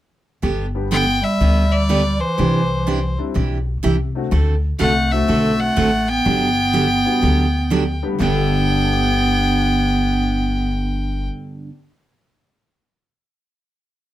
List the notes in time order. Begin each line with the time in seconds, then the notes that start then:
0.42 G1 D3 G3 B3 D4 G4
0.75 G3 B3 D4 G4
0.91 D3 G3 B3 D4 G4 G5
1.22 G3 E5
1.40 D2 D3 G3 B3 D4 G4
1.72 G3 D5
1.89 D3 G3 B3 D4 G4
2.19 E3 C5
2.38 C2 C3 E3 D4 G4
2.87 C3 E3 D4 G4
3.18 G3 C4 D4 E4
3.34 B1 C3 E3 D4 G4
3.83 C2 C3 E3 D4 G4
4.15 A3 C4 D4 F#4
4.31 D2 D3 A3 C4 F#4 A4
4.79 C2 D3 A3 C4 F#4 A4 F#5
5.12 A3 C4 D4 F#4 E5
5.28 B1 D3 A3 C4 F#4 A4
5.60 A3 F#5
5.76 A1 D3 A3 C4 F#4 A4
6.08 B3 G5
6.25 G1 D3 F#3 B3 D4 G4
6.73 D3 F#3 B3 D4 G4
7.05 G3 B3 D4 F#4
7.22 D2 D3 F#3 B3 D4 G4
7.70 D3 F#3 B3 D4 G4
8.03 G3 B3 D4 G4
8.07 G2
8.13 D3
8.19 G1 G2 D3 G3 B3 D4 G4 G5
8.26 B3
8.32 A4
8.69 D5
8.76 F#5
8.84 A5
8.93 D6
9.03 F#6
9.25 D7